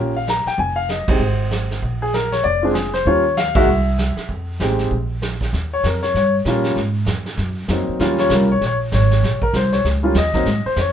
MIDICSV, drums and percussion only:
0, 0, Header, 1, 2, 480
1, 0, Start_track
1, 0, Tempo, 308801
1, 905, Time_signature, 4, 2, 24, 8
1, 16980, End_track
2, 0, Start_track
2, 0, Title_t, "Drums"
2, 424, Note_on_c, 9, 44, 57
2, 430, Note_on_c, 9, 38, 54
2, 579, Note_off_c, 9, 44, 0
2, 585, Note_off_c, 9, 38, 0
2, 722, Note_on_c, 9, 38, 35
2, 877, Note_off_c, 9, 38, 0
2, 904, Note_on_c, 9, 36, 34
2, 910, Note_on_c, 9, 25, 48
2, 1060, Note_off_c, 9, 36, 0
2, 1377, Note_on_c, 9, 44, 51
2, 1383, Note_on_c, 9, 38, 53
2, 1532, Note_off_c, 9, 44, 0
2, 1539, Note_off_c, 9, 38, 0
2, 1675, Note_on_c, 9, 51, 73
2, 1679, Note_on_c, 9, 36, 74
2, 1831, Note_off_c, 9, 51, 0
2, 1835, Note_off_c, 9, 36, 0
2, 1865, Note_off_c, 9, 25, 0
2, 1865, Note_on_c, 9, 25, 45
2, 2343, Note_on_c, 9, 44, 51
2, 2350, Note_on_c, 9, 38, 53
2, 2499, Note_off_c, 9, 44, 0
2, 2505, Note_off_c, 9, 38, 0
2, 2655, Note_on_c, 9, 38, 36
2, 2811, Note_off_c, 9, 38, 0
2, 2837, Note_on_c, 9, 36, 33
2, 2849, Note_off_c, 9, 25, 0
2, 2849, Note_on_c, 9, 25, 55
2, 2993, Note_off_c, 9, 36, 0
2, 3317, Note_on_c, 9, 44, 49
2, 3323, Note_on_c, 9, 38, 58
2, 3473, Note_off_c, 9, 44, 0
2, 3479, Note_off_c, 9, 38, 0
2, 3602, Note_on_c, 9, 38, 38
2, 3758, Note_off_c, 9, 38, 0
2, 3792, Note_on_c, 9, 36, 32
2, 3802, Note_off_c, 9, 25, 0
2, 3802, Note_on_c, 9, 25, 48
2, 3948, Note_off_c, 9, 36, 0
2, 4265, Note_on_c, 9, 44, 56
2, 4271, Note_on_c, 9, 38, 57
2, 4421, Note_off_c, 9, 44, 0
2, 4427, Note_off_c, 9, 38, 0
2, 4562, Note_on_c, 9, 38, 35
2, 4717, Note_off_c, 9, 38, 0
2, 4749, Note_on_c, 9, 36, 34
2, 4750, Note_off_c, 9, 25, 0
2, 4750, Note_on_c, 9, 25, 50
2, 4904, Note_off_c, 9, 36, 0
2, 5235, Note_on_c, 9, 44, 48
2, 5241, Note_on_c, 9, 38, 60
2, 5390, Note_off_c, 9, 44, 0
2, 5397, Note_off_c, 9, 38, 0
2, 5515, Note_on_c, 9, 51, 68
2, 5522, Note_on_c, 9, 36, 79
2, 5670, Note_off_c, 9, 51, 0
2, 5677, Note_off_c, 9, 36, 0
2, 5717, Note_off_c, 9, 25, 0
2, 5717, Note_on_c, 9, 25, 45
2, 6188, Note_on_c, 9, 44, 50
2, 6194, Note_on_c, 9, 38, 56
2, 6344, Note_off_c, 9, 44, 0
2, 6350, Note_off_c, 9, 38, 0
2, 6477, Note_on_c, 9, 38, 36
2, 6632, Note_off_c, 9, 38, 0
2, 6667, Note_on_c, 9, 36, 35
2, 6673, Note_off_c, 9, 25, 0
2, 6673, Note_on_c, 9, 25, 42
2, 6822, Note_off_c, 9, 36, 0
2, 7144, Note_on_c, 9, 44, 61
2, 7151, Note_on_c, 9, 38, 55
2, 7300, Note_off_c, 9, 44, 0
2, 7306, Note_off_c, 9, 38, 0
2, 7442, Note_on_c, 9, 38, 38
2, 7597, Note_off_c, 9, 38, 0
2, 7632, Note_on_c, 9, 36, 34
2, 7638, Note_off_c, 9, 25, 0
2, 7638, Note_on_c, 9, 25, 43
2, 7788, Note_off_c, 9, 36, 0
2, 8111, Note_on_c, 9, 44, 56
2, 8117, Note_on_c, 9, 38, 57
2, 8266, Note_off_c, 9, 44, 0
2, 8272, Note_off_c, 9, 38, 0
2, 8408, Note_on_c, 9, 36, 41
2, 8419, Note_on_c, 9, 38, 37
2, 8563, Note_off_c, 9, 36, 0
2, 8575, Note_off_c, 9, 38, 0
2, 8594, Note_on_c, 9, 36, 23
2, 8602, Note_off_c, 9, 25, 0
2, 8602, Note_on_c, 9, 25, 46
2, 8602, Note_on_c, 9, 38, 41
2, 8750, Note_off_c, 9, 36, 0
2, 8757, Note_off_c, 9, 38, 0
2, 9068, Note_on_c, 9, 44, 49
2, 9073, Note_on_c, 9, 36, 24
2, 9074, Note_on_c, 9, 38, 56
2, 9224, Note_off_c, 9, 44, 0
2, 9229, Note_off_c, 9, 36, 0
2, 9230, Note_off_c, 9, 38, 0
2, 9364, Note_on_c, 9, 38, 39
2, 9519, Note_off_c, 9, 38, 0
2, 9554, Note_on_c, 9, 36, 24
2, 9563, Note_off_c, 9, 25, 0
2, 9563, Note_on_c, 9, 25, 46
2, 9563, Note_on_c, 9, 38, 42
2, 9709, Note_off_c, 9, 36, 0
2, 9718, Note_off_c, 9, 38, 0
2, 10023, Note_on_c, 9, 44, 55
2, 10030, Note_on_c, 9, 38, 53
2, 10031, Note_on_c, 9, 36, 17
2, 10179, Note_off_c, 9, 44, 0
2, 10185, Note_off_c, 9, 38, 0
2, 10186, Note_off_c, 9, 36, 0
2, 10316, Note_on_c, 9, 38, 37
2, 10471, Note_off_c, 9, 38, 0
2, 10507, Note_on_c, 9, 36, 22
2, 10508, Note_off_c, 9, 25, 0
2, 10508, Note_on_c, 9, 25, 43
2, 10508, Note_on_c, 9, 38, 43
2, 10662, Note_off_c, 9, 36, 0
2, 10663, Note_off_c, 9, 38, 0
2, 10975, Note_on_c, 9, 44, 53
2, 10981, Note_on_c, 9, 38, 57
2, 10986, Note_on_c, 9, 36, 18
2, 11131, Note_off_c, 9, 44, 0
2, 11137, Note_off_c, 9, 38, 0
2, 11141, Note_off_c, 9, 36, 0
2, 11279, Note_on_c, 9, 38, 41
2, 11435, Note_off_c, 9, 38, 0
2, 11456, Note_off_c, 9, 25, 0
2, 11456, Note_on_c, 9, 25, 54
2, 11456, Note_on_c, 9, 38, 43
2, 11465, Note_on_c, 9, 36, 23
2, 11611, Note_off_c, 9, 38, 0
2, 11620, Note_off_c, 9, 36, 0
2, 11935, Note_on_c, 9, 44, 56
2, 11941, Note_on_c, 9, 38, 56
2, 11946, Note_on_c, 9, 36, 22
2, 12090, Note_off_c, 9, 44, 0
2, 12096, Note_off_c, 9, 38, 0
2, 12101, Note_off_c, 9, 36, 0
2, 12427, Note_off_c, 9, 25, 0
2, 12427, Note_on_c, 9, 25, 52
2, 12427, Note_on_c, 9, 38, 43
2, 12428, Note_on_c, 9, 36, 24
2, 12583, Note_off_c, 9, 36, 0
2, 12583, Note_off_c, 9, 38, 0
2, 12718, Note_on_c, 9, 38, 51
2, 12873, Note_off_c, 9, 38, 0
2, 12891, Note_on_c, 9, 44, 63
2, 12897, Note_on_c, 9, 38, 56
2, 12906, Note_on_c, 9, 36, 24
2, 13046, Note_off_c, 9, 44, 0
2, 13052, Note_off_c, 9, 38, 0
2, 13061, Note_off_c, 9, 36, 0
2, 13387, Note_on_c, 9, 36, 25
2, 13390, Note_off_c, 9, 25, 0
2, 13390, Note_on_c, 9, 25, 47
2, 13390, Note_on_c, 9, 38, 43
2, 13542, Note_off_c, 9, 36, 0
2, 13545, Note_off_c, 9, 38, 0
2, 13859, Note_on_c, 9, 44, 60
2, 13865, Note_on_c, 9, 38, 56
2, 13866, Note_on_c, 9, 36, 25
2, 14014, Note_off_c, 9, 44, 0
2, 14021, Note_off_c, 9, 38, 0
2, 14022, Note_off_c, 9, 36, 0
2, 14161, Note_on_c, 9, 38, 39
2, 14316, Note_off_c, 9, 38, 0
2, 14347, Note_on_c, 9, 36, 22
2, 14353, Note_off_c, 9, 25, 0
2, 14353, Note_on_c, 9, 25, 52
2, 14353, Note_on_c, 9, 38, 46
2, 14502, Note_off_c, 9, 36, 0
2, 14508, Note_off_c, 9, 38, 0
2, 14638, Note_on_c, 9, 36, 57
2, 14793, Note_off_c, 9, 36, 0
2, 14817, Note_on_c, 9, 44, 49
2, 14822, Note_on_c, 9, 36, 23
2, 14823, Note_on_c, 9, 38, 58
2, 14972, Note_off_c, 9, 44, 0
2, 14977, Note_off_c, 9, 36, 0
2, 14978, Note_off_c, 9, 38, 0
2, 15118, Note_on_c, 9, 38, 38
2, 15273, Note_off_c, 9, 38, 0
2, 15302, Note_on_c, 9, 36, 23
2, 15305, Note_off_c, 9, 25, 0
2, 15305, Note_on_c, 9, 25, 46
2, 15305, Note_on_c, 9, 38, 43
2, 15458, Note_off_c, 9, 36, 0
2, 15461, Note_off_c, 9, 38, 0
2, 15765, Note_on_c, 9, 44, 53
2, 15772, Note_on_c, 9, 38, 62
2, 15778, Note_on_c, 9, 36, 19
2, 15921, Note_off_c, 9, 44, 0
2, 15927, Note_off_c, 9, 38, 0
2, 15933, Note_off_c, 9, 36, 0
2, 16067, Note_on_c, 9, 38, 36
2, 16070, Note_on_c, 9, 36, 50
2, 16222, Note_off_c, 9, 38, 0
2, 16225, Note_off_c, 9, 36, 0
2, 16248, Note_off_c, 9, 25, 0
2, 16248, Note_on_c, 9, 25, 47
2, 16248, Note_on_c, 9, 38, 45
2, 16254, Note_on_c, 9, 36, 21
2, 16403, Note_off_c, 9, 38, 0
2, 16410, Note_off_c, 9, 36, 0
2, 16730, Note_on_c, 9, 44, 56
2, 16734, Note_on_c, 9, 36, 25
2, 16737, Note_on_c, 9, 38, 60
2, 16886, Note_off_c, 9, 44, 0
2, 16889, Note_off_c, 9, 36, 0
2, 16892, Note_off_c, 9, 38, 0
2, 16980, Note_off_c, 9, 25, 0
2, 16980, End_track
0, 0, End_of_file